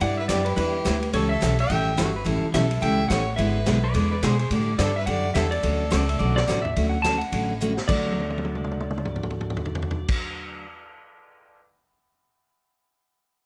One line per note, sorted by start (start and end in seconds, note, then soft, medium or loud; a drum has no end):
0.00 0.28 G2 medium
0.00 0.20 G3 medium
0.00 0.20 D4 medium
0.00 0.20 E4 medium
0.00 0.21 B4 medium
0.00 0.21 D5 medium
0.00 0.17 F#5 loud
0.00 kick soft
0.00 ride medium
0.17 0.29 B4 medium
0.17 0.28 E5 medium
0.28 0.56 F#2 loud
0.28 0.40 G3 medium
0.28 0.40 D4 medium
0.28 0.40 E4 medium
0.28 0.47 G4 medium
0.28 0.40 B4 medium
0.28 0.46 D5 medium
0.28 kick soft
0.28 snare medium
0.28 hi-hat pedal medium
0.28 ride medium
0.45 0.58 G4 medium
0.45 0.55 B4 medium
0.45 ride medium
0.56 0.85 E2 medium
0.56 0.76 G3 medium
0.56 0.76 D4 medium
0.56 0.76 E4 medium
0.56 1.10 G4 medium
0.56 1.13 B4 medium
0.56 0.76 B4 medium
0.56 kick soft
0.56 ride medium
0.85 1.13 D2 medium
0.85 0.96 G3 medium
0.85 0.96 D4 medium
0.85 0.96 E4 medium
0.85 0.97 B4 medium
0.85 kick soft
0.85 snare medium
0.85 hi-hat pedal medium
0.85 ride medium
1.03 ride soft
1.13 1.41 C#2 medium
1.13 1.32 E3 medium
1.13 1.33 G3 medium
1.13 1.33 C#4 medium
1.13 1.33 E4 medium
1.13 1.31 A4 medium
1.13 1.33 A4 medium
1.13 1.29 C#5 medium
1.13 kick soft
1.13 ride medium
1.29 1.59 A4 medium
1.29 1.59 E5 loud
1.41 1.69 B1 medium
1.41 1.52 E3 medium
1.41 1.52 G3 medium
1.41 1.53 C#4 medium
1.41 1.53 E4 medium
1.41 1.53 A4 medium
1.41 kick soft
1.41 snare medium
1.41 hi-hat pedal medium
1.41 ride medium
1.59 1.96 E5 medium
1.59 1.96 G5 loud
1.59 ride medium
1.70 1.97 A1 medium
1.70 1.89 E3 medium
1.70 1.89 G3 medium
1.70 1.89 C#4 medium
1.70 1.90 E4 medium
1.70 1.90 A4 medium
1.70 kick soft
1.70 ride medium
1.97 2.25 G1 medium
1.97 2.08 E3 medium
1.97 2.08 G3 medium
1.97 2.09 C#4 medium
1.97 2.09 E4 medium
1.97 2.14 F#4 medium
1.97 2.09 A4 medium
1.97 kick soft
1.97 snare medium
1.97 hi-hat pedal medium
1.97 ride medium
2.16 2.27 B4 medium
2.25 2.42 A1 medium
2.25 2.44 E3 medium
2.25 2.45 G3 medium
2.25 2.45 C#4 medium
2.25 2.45 E4 medium
2.25 2.48 A4 medium
2.25 2.45 A4 medium
2.25 kick soft
2.25 ride medium
2.43 muted upright bass stroke soft
2.54 2.82 B1 medium
2.54 2.65 E3 medium
2.54 2.65 G3 medium
2.54 2.65 C#4 medium
2.54 2.65 E4 medium
2.54 2.80 A4 medium
2.54 2.65 A4 medium
2.54 2.83 E5 medium
2.54 kick soft
2.54 snare medium
2.54 hi-hat pedal medium
2.54 ride medium
2.71 ride medium
2.81 3.10 C#2 medium
2.81 3.01 E3 soft
2.81 3.01 G3 medium
2.81 3.01 C#4 medium
2.81 3.01 E4 medium
2.81 3.02 A4 medium
2.81 3.08 E5 medium
2.81 3.08 G5 loud
2.81 kick soft
2.81 ride medium
3.09 3.38 A1 medium
3.09 3.21 E3 medium
3.09 3.21 G3 medium
3.09 3.21 C#4 medium
3.09 3.22 E4 medium
3.09 3.22 A4 medium
3.09 3.35 C#5 medium
3.09 3.36 F#5 medium
3.09 kick soft
3.09 snare medium
3.09 hi-hat pedal medium
3.09 ride medium
3.36 3.66 G#1 medium
3.36 3.57 D3 medium
3.36 3.58 G#3 medium
3.36 3.58 B3 medium
3.36 3.58 E4 medium
3.36 3.58 G#4 medium
3.36 4.18 B4 medium
3.36 4.18 E5 medium
3.36 kick soft
3.36 ride medium
3.66 3.94 B1 medium
3.66 3.77 D3 medium
3.66 3.77 G#3 medium
3.66 3.78 B3 medium
3.66 3.78 E4 medium
3.66 3.78 G#4 medium
3.66 kick soft
3.66 snare medium
3.66 hi-hat pedal medium
3.66 ride medium
3.84 3.94 B4 medium
3.84 3.94 D5 medium
3.94 4.22 E2 medium
3.94 4.13 D3 medium
3.94 4.14 G#3 medium
3.94 4.14 B3 medium
3.94 4.14 E4 medium
3.94 4.14 G#4 medium
3.94 4.10 B4 medium
3.94 4.11 D5 medium
3.94 kick soft
3.94 ride medium
4.11 4.22 B4 medium
4.11 4.23 D5 medium
4.22 4.50 B2 medium
4.22 4.34 D3 medium
4.22 4.34 G#3 medium
4.22 4.34 B3 medium
4.22 4.34 E4 medium
4.22 4.39 G#4 medium
4.22 4.34 G#4 medium
4.22 4.39 C5 medium
4.22 kick soft
4.22 snare medium
4.22 hi-hat pedal medium
4.22 ride medium
4.39 4.50 G#4 medium
4.39 4.51 C5 medium
4.39 ride medium
4.50 4.78 A2 medium
4.50 4.70 D3 medium
4.50 4.70 G3 medium
4.50 4.71 D4 medium
4.50 4.71 E4 medium
4.50 4.71 A4 medium
4.50 4.74 D5 loud
4.50 kick soft
4.50 ride medium
4.79 5.06 G2 loud
4.79 4.90 D3 medium
4.79 4.90 G3 medium
4.79 4.90 D4 medium
4.79 4.91 E4 medium
4.79 4.91 A4 medium
4.79 4.96 A4 medium
4.79 4.96 D5 medium
4.79 kick soft
4.79 snare medium
4.79 hi-hat pedal medium
4.79 ride medium
4.96 5.07 B4 medium
4.96 5.06 E5 medium
5.06 5.35 F#2 medium
5.06 5.26 D3 medium
5.06 5.26 G3 medium
5.06 5.27 D4 medium
5.06 5.27 E4 medium
5.06 5.27 A4 medium
5.06 5.34 D5 medium
5.06 5.34 F#5 loud
5.06 kick soft
5.06 ride medium
5.34 5.63 E2 medium
5.34 5.46 D3 medium
5.34 5.46 G3 medium
5.34 5.46 D4 medium
5.34 5.46 E4 medium
5.34 5.46 A4 medium
5.34 5.53 A4 medium
5.34 5.39 E5 medium
5.34 kick soft
5.34 snare medium
5.34 hi-hat pedal medium
5.34 ride medium
5.51 6.65 A4 medium
5.51 6.35 D5 medium
5.51 ride medium
5.63 5.91 D2 medium
5.63 5.82 D3 medium
5.63 5.82 F#3 medium
5.63 5.83 A3 medium
5.63 5.83 C#4 medium
5.63 5.83 F#4 medium
5.63 kick soft
5.63 ride medium
5.90 6.19 C#2 loud
5.90 6.02 D3 medium
5.90 6.02 F#3 medium
5.90 6.02 A3 medium
5.90 6.02 C#4 medium
5.90 6.03 F#4 medium
5.90 6.08 D5 loud
5.90 kick soft
5.90 snare medium
5.90 hi-hat pedal medium
5.90 ride medium
6.09 6.19 E5 medium
6.09 ride medium
6.19 6.48 B1 medium
6.19 6.39 D3 medium
6.19 6.39 F#3 medium
6.19 6.39 A3 medium
6.19 6.39 C#4 medium
6.19 6.39 F#4 medium
6.19 6.36 D5 medium
6.36 6.63 D5 medium
6.36 6.47 D5 medium
6.36 snare medium
6.47 6.76 A1 medium
6.47 6.59 D3 medium
6.47 6.59 F#3 medium
6.47 6.59 A3 medium
6.47 6.59 C#4 medium
6.47 6.59 F#4 medium
6.47 6.70 D5 medium
6.47 snare medium
6.47 hi-hat pedal medium
6.62 6.89 E5 medium
6.62 floor tom medium
6.76 7.21 D2 medium
6.76 6.96 D3 medium
6.76 6.95 F#3 medium
6.76 6.96 A3 medium
6.76 6.96 C#4 medium
6.76 6.96 F#4 medium
6.76 kick soft
6.76 ride medium
6.89 7.03 F#5 medium
7.02 7.15 D3 medium
7.02 7.15 F#3 medium
7.02 7.15 A3 medium
7.02 7.16 C#4 medium
7.02 7.16 F#4 medium
7.02 7.21 A5 loud
7.02 kick soft
7.02 snare medium
7.02 hi-hat pedal medium
7.02 ride medium
7.18 7.59 F#5 medium
7.18 ride soft
7.32 7.78 A1 medium
7.32 7.52 D3 medium
7.32 7.52 F#3 medium
7.32 7.52 A3 medium
7.32 7.52 C#4 medium
7.32 7.52 F#4 medium
7.32 kick soft
7.32 ride medium
7.61 7.71 D3 medium
7.61 7.72 F#3 medium
7.61 7.72 A3 medium
7.61 7.72 C#4 medium
7.61 7.72 F#4 medium
7.61 hi-hat pedal medium
7.77 snare medium
7.88 10.10 D2 medium
7.88 10.65 D3 medium
7.88 10.65 F#3 medium
7.88 10.65 A3 medium
7.88 10.09 D5 medium
7.88 kick loud
7.88 crash medium
7.92 10.65 F#4 medium
8.06 high tom soft
8.12 high tom medium
8.20 high tom soft
8.30 high tom soft
8.38 high tom medium
8.45 high tom medium
8.55 mid tom medium
8.64 mid tom medium
8.71 mid tom medium
8.80 mid tom medium
8.91 mid tom medium
8.98 mid tom medium
9.05 mid tom medium
9.16 mid tom medium
9.23 mid tom medium
9.30 mid tom medium
9.41 mid tom medium
9.50 mid tom medium
9.57 floor tom medium
9.65 floor tom medium
9.75 floor tom medium
9.82 floor tom medium
9.91 floor tom medium
10.08 kick loud
10.08 crash medium